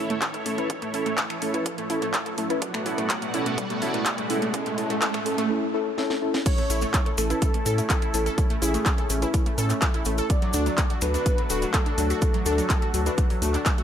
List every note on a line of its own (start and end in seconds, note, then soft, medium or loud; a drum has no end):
0.00 0.12 C#4 medium
0.00 0.12 E4 medium
0.00 2.58 E4 medium
0.00 0.12 A4 loud
0.00 2.58 A4 medium
0.00 2.58 C#5 medium
0.00 riser medium
0.10 0.18 A3 loud
0.10 closed hi-hat soft
0.22 kick loud
0.22 clap loud
0.22 closed hi-hat medium
0.34 0.37 A4 medium
0.34 closed hi-hat soft
0.46 0.52 A3 medium
0.46 0.56 C#4 medium
0.46 0.56 E4 medium
0.46 0.56 A4 medium
0.46 open hi-hat loud
0.58 0.68 C#4 medium
0.58 0.68 E4 medium
0.58 0.61 E4 medium
0.58 0.68 B4 loud
0.58 closed hi-hat soft
0.70 kick loud
0.70 closed hi-hat loud
0.82 0.90 A3 loud
0.82 closed hi-hat soft
0.94 1.08 C#4 medium
0.94 1.08 E4 medium
0.94 1.02 E4 loud
0.94 1.08 A4 loud
0.94 open hi-hat loud
1.06 1.14 A3 loud
1.06 closed hi-hat soft
1.18 finger snap medium
1.18 kick loud
1.18 clap loud
1.18 closed hi-hat medium
1.30 1.33 A4 medium
1.30 finger snap medium
1.30 closed hi-hat soft
1.42 1.47 A3 medium
1.42 1.52 C#4 medium
1.42 1.52 E4 medium
1.42 1.52 A4 medium
1.42 open hi-hat loud
1.54 1.64 C#4 medium
1.54 1.64 E4 medium
1.54 1.57 E4 medium
1.54 1.64 B4 medium
1.54 closed hi-hat soft
1.66 kick loud
1.66 closed hi-hat medium
1.78 1.86 A3 loud
1.78 closed hi-hat soft
1.90 2.03 C#4 medium
1.90 2.04 E4 medium
1.90 1.98 E4 loud
1.90 2.04 A4 loud
1.90 open hi-hat loud
2.02 2.10 A3 loud
2.02 closed hi-hat soft
2.14 kick loud
2.14 clap loud
2.14 closed hi-hat medium
2.26 2.29 A4 medium
2.26 closed hi-hat soft
2.38 2.43 A3 medium
2.38 2.48 C#4 medium
2.38 2.48 E4 medium
2.38 2.48 A4 medium
2.38 open hi-hat loud
2.50 2.60 C#4 medium
2.50 2.60 E4 medium
2.50 2.53 E4 medium
2.50 2.60 B4 loud
2.50 closed hi-hat soft
2.62 5.47 B2 medium
2.62 5.47 B3 medium
2.62 5.47 F#4 medium
2.62 5.47 D5 medium
2.62 5.47 F#5 medium
2.62 kick loud
2.62 closed hi-hat loud
2.74 2.82 A3 medium
2.74 finger snap medium
2.74 closed hi-hat soft
2.86 3.00 C#4 medium
2.86 3.00 E4 medium
2.86 2.94 E4 loud
2.86 3.00 A4 loud
2.86 open hi-hat loud
2.98 3.06 A3 loud
2.98 closed hi-hat soft
3.10 finger snap medium
3.10 kick loud
3.10 clap loud
3.10 closed hi-hat loud
3.22 3.30 A3 loud
3.22 closed hi-hat soft
3.34 3.48 C#4 medium
3.34 3.48 E4 medium
3.34 3.42 E4 loud
3.34 3.48 A4 loud
3.34 open hi-hat loud
3.46 3.54 A3 loud
3.46 closed hi-hat soft
3.58 kick loud
3.58 closed hi-hat loud
3.70 3.78 A3 loud
3.70 closed hi-hat soft
3.82 3.96 C#4 medium
3.82 3.96 E4 medium
3.82 3.90 E4 loud
3.82 3.96 A4 loud
3.82 open hi-hat loud
3.94 4.02 A3 loud
3.94 closed hi-hat soft
4.06 kick loud
4.06 clap loud
4.06 closed hi-hat loud
4.18 4.26 A3 loud
4.18 closed hi-hat soft
4.30 4.44 C#4 medium
4.30 4.44 E4 medium
4.30 4.38 E4 loud
4.30 4.44 A4 loud
4.30 open hi-hat loud
4.42 4.50 A3 loud
4.42 closed hi-hat soft
4.54 4.68 C#4 loud
4.54 4.68 E4 medium
4.54 4.68 A4 loud
4.54 kick loud
4.54 closed hi-hat loud
4.66 4.74 A3 loud
4.66 closed hi-hat soft
4.78 4.92 C#4 loud
4.78 4.92 E4 medium
4.78 4.92 A4 loud
4.78 open hi-hat loud
4.90 4.98 A3 loud
4.90 closed hi-hat soft
5.02 5.16 C#4 medium
5.02 5.16 E4 medium
5.02 5.16 A4 loud
5.02 finger snap medium
5.02 kick loud
5.02 clap loud
5.02 closed hi-hat loud
5.14 5.22 A3 loud
5.14 finger snap medium
5.14 closed hi-hat soft
5.26 5.40 C#4 loud
5.26 5.40 E4 medium
5.26 5.40 A4 loud
5.26 open hi-hat loud
5.38 5.46 A3 loud
5.38 closed hi-hat soft
5.50 5.64 C#4 loud
5.50 5.64 E4 medium
5.50 5.64 A4 loud
5.74 5.88 C#4 loud
5.74 5.88 E4 medium
5.74 5.88 A4 loud
5.98 6.12 C#4 medium
5.98 6.12 E4 medium
5.98 6.12 A4 loud
5.98 snare medium
6.10 snare medium
6.22 6.36 C#4 medium
6.22 6.36 E4 medium
6.22 6.36 A4 loud
6.34 snare medium
6.46 13.83 A3 medium
6.46 10.26 C#4 medium
6.46 7.09 C#5 loud
6.46 kick loud
6.46 closed hi-hat loud
6.46 crash loud
6.46 cabasa soft
6.58 6.66 A3 loud
6.58 closed hi-hat soft
6.70 6.85 A1 loud
6.70 6.84 C#4 loud
6.70 6.78 E4 loud
6.70 6.84 E4 medium
6.70 6.84 A4 loud
6.70 open hi-hat loud
6.70 cabasa loud
6.81 6.90 A3 loud
6.81 closed hi-hat soft
6.81 cabasa medium
6.94 kick loud
6.94 clap loud
6.94 closed hi-hat loud
6.94 cabasa soft
7.06 7.09 A4 medium
7.06 closed hi-hat soft
7.18 7.33 A1 loud
7.18 7.24 A3 medium
7.18 7.28 C#4 medium
7.18 7.28 E4 medium
7.18 7.28 A4 medium
7.18 7.81 A4 loud
7.18 finger snap medium
7.18 open hi-hat loud
7.18 cabasa loud
7.30 7.52 C#4 medium
7.30 7.52 E4 medium
7.30 7.33 E4 medium
7.30 7.52 B4 loud
7.30 closed hi-hat soft
7.30 cabasa soft
7.42 kick loud
7.42 closed hi-hat loud
7.42 cabasa soft
7.54 7.62 A3 medium
7.54 closed hi-hat soft
7.66 7.81 A2 medium
7.66 7.80 C#4 medium
7.66 7.80 E4 medium
7.66 7.80 A4 medium
7.66 7.74 A4 loud
7.66 open hi-hat loud
7.66 cabasa medium
7.78 7.84 A3 medium
7.78 closed hi-hat soft
7.78 cabasa medium
7.90 8.53 A4 loud
7.90 finger snap medium
7.90 kick loud
7.90 clap loud
7.90 closed hi-hat loud
7.90 cabasa soft
8.02 8.08 E4 medium
8.02 closed hi-hat soft
8.14 8.29 A1 medium
8.14 8.19 A3 medium
8.14 8.28 C#4 medium
8.14 8.28 E4 medium
8.14 8.28 A4 loud
8.14 open hi-hat loud
8.14 cabasa medium
8.26 8.34 A4 loud
8.26 closed hi-hat soft
8.26 cabasa medium
8.38 kick loud
8.38 closed hi-hat loud
8.38 cabasa soft
8.50 8.58 A3 loud
8.50 closed hi-hat soft
8.62 8.77 A1 loud
8.62 8.76 C#4 loud
8.62 8.76 E4 medium
8.62 8.70 E4 loud
8.62 9.24 G#4 loud
8.62 8.76 A4 loud
8.62 open hi-hat loud
8.62 cabasa loud
8.74 8.82 A3 loud
8.74 closed hi-hat soft
8.74 cabasa medium
8.86 kick loud
8.86 clap loud
8.86 closed hi-hat medium
8.86 cabasa soft
8.98 9.01 A4 medium
8.98 closed hi-hat soft
9.10 9.25 A1 loud
9.10 9.16 A3 medium
9.10 9.20 C#4 medium
9.10 9.20 E4 medium
9.10 9.20 A4 medium
9.10 open hi-hat loud
9.10 cabasa loud
9.22 9.44 C#4 loud
9.22 9.44 E4 medium
9.22 9.25 E4 medium
9.22 9.44 B4 loud
9.22 closed hi-hat soft
9.22 cabasa medium
9.34 kick loud
9.34 closed hi-hat loud
9.34 cabasa soft
9.46 9.54 A3 medium
9.46 closed hi-hat soft
9.58 9.73 A2 medium
9.58 9.72 C#4 medium
9.58 9.72 E4 medium
9.58 9.72 A4 medium
9.58 9.66 A4 loud
9.58 open hi-hat loud
9.58 cabasa loud
9.70 9.76 A3 medium
9.70 clap soft
9.70 closed hi-hat soft
9.70 cabasa medium
9.82 finger snap medium
9.82 kick loud
9.82 clap loud
9.82 closed hi-hat medium
9.82 cabasa soft
9.94 10.00 E4 medium
9.94 closed hi-hat soft
10.05 10.21 A1 medium
10.05 10.11 A3 medium
10.05 10.20 C#4 medium
10.05 10.20 E4 medium
10.05 10.20 A4 loud
10.05 open hi-hat loud
10.05 cabasa loud
10.18 10.26 A4 loud
10.18 closed hi-hat soft
10.18 cabasa medium
10.30 13.83 F#4 loud
10.30 10.93 D5 loud
10.30 kick loud
10.30 closed hi-hat medium
10.30 cabasa soft
10.42 10.50 F#3 loud
10.42 closed hi-hat soft
10.53 10.69 D2 loud
10.53 10.68 D4 loud
10.53 10.62 D4 loud
10.53 10.68 F#4 medium
10.53 10.67 A4 loud
10.53 open hi-hat loud
10.53 cabasa loud
10.66 10.74 F#3 loud
10.66 closed hi-hat soft
10.66 cabasa medium
10.78 kick loud
10.78 clap loud
10.78 closed hi-hat medium
10.78 cabasa soft
10.90 10.93 F#4 medium
10.90 closed hi-hat soft
11.01 11.17 D2 loud
11.01 11.08 F#3 medium
11.01 11.12 D4 medium
11.01 11.12 F#4 medium
11.01 11.12 A4 medium
11.01 11.65 B4 loud
11.01 finger snap medium
11.01 open hi-hat loud
11.01 cabasa loud
11.14 11.36 D4 medium
11.14 11.17 D4 medium
11.14 11.36 F#4 medium
11.14 11.36 B4 loud
11.14 closed hi-hat soft
11.14 cabasa medium
11.26 kick loud
11.26 closed hi-hat medium
11.26 cabasa soft
11.38 11.46 F#3 medium
11.38 closed hi-hat soft
11.50 11.65 D1 medium
11.50 11.64 D4 medium
11.50 11.64 F#4 medium
11.50 11.58 F#4 loud
11.50 11.64 A4 medium
11.50 open hi-hat loud
11.50 cabasa loud
11.62 11.68 F#3 medium
11.62 closed hi-hat soft
11.62 cabasa medium
11.74 12.36 A4 loud
11.74 finger snap medium
11.74 kick loud
11.74 clap loud
11.74 closed hi-hat medium
11.74 cabasa soft
11.86 11.92 D4 medium
11.86 closed hi-hat soft
11.98 12.13 D2 medium
11.98 12.04 F#3 medium
11.98 12.12 D4 loud
11.98 12.12 F#4 medium
11.98 12.12 A4 loud
11.98 open hi-hat loud
11.98 cabasa medium
12.10 12.18 F#4 loud
12.10 closed hi-hat soft
12.10 cabasa medium
12.22 kick loud
12.22 closed hi-hat medium
12.22 cabasa soft
12.34 12.42 F#3 loud
12.34 closed hi-hat soft
12.46 12.61 D2 loud
12.46 12.60 D4 loud
12.46 12.54 D4 loud
12.46 12.60 F#4 medium
12.46 12.60 A4 loud
12.46 13.09 A4 loud
12.46 open hi-hat loud
12.46 cabasa loud
12.58 12.66 F#3 loud
12.58 closed hi-hat soft
12.58 cabasa medium
12.70 kick loud
12.70 clap loud
12.70 closed hi-hat medium
12.70 cabasa soft
12.82 12.85 F#4 medium
12.82 closed hi-hat soft
12.94 13.09 D2 loud
12.94 13.00 F#3 medium
12.94 13.04 D4 medium
12.94 13.04 F#4 medium
12.94 13.04 A4 medium
12.94 open hi-hat loud
12.94 cabasa loud
13.06 13.28 D4 medium
13.06 13.09 D4 medium
13.06 13.28 F#4 medium
13.06 13.28 B4 loud
13.06 closed hi-hat soft
13.06 cabasa medium
13.18 kick loud
13.18 closed hi-hat medium
13.18 cabasa soft
13.30 13.38 F#3 medium
13.30 open hi-hat medium
13.42 13.57 D2 loud
13.42 13.45 A3 medium
13.42 13.56 D4 medium
13.42 13.56 F#4 medium
13.42 13.56 A4 medium
13.42 open hi-hat loud
13.42 cabasa loud
13.54 13.60 D4 medium
13.54 clap soft
13.54 closed hi-hat soft
13.54 cabasa medium
13.66 finger snap medium
13.66 kick loud
13.66 clap loud
13.66 closed hi-hat medium
13.66 cabasa soft
13.78 13.83 F#4 medium
13.78 closed hi-hat soft